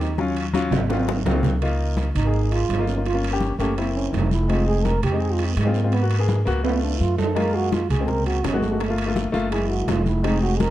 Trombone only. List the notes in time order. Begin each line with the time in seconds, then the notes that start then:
0.01 D#4
0.19 C#4
2.15 D#4
2.52 F4
2.88 C#4
3.06 F4
3.59 A3
3.78 A#3
3.95 C#4
4.13 D#4
4.32 E4
4.50 F4
4.68 G#4
4.85 A#4
5.03 G4
5.21 G#4
5.33 F4
5.46 C4
5.57 G#3
5.75 A#3
5.92 B3
6.64 B3
6.83 D4
7.00 F4
7.19 A4
7.37 A#4
7.55 F#4
7.74 F4
7.91 G#4
8.09 A#4
8.26 F#4
8.45 C#4
8.62 A3
9.52 G#4
9.70 F#4
9.88 F4
10.06 E4
10.24 D#4
10.43 F#4
10.60 A#4